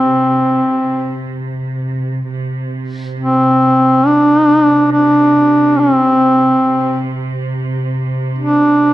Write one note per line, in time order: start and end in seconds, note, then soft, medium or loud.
0.00 2.24 C3 soft
0.00 1.34 C4 medium
2.25 8.94 C3 soft
3.20 4.08 C4 medium
4.07 4.91 D4 loud
4.92 5.81 D4 medium
5.79 7.08 C4 medium
8.38 8.94 D4 medium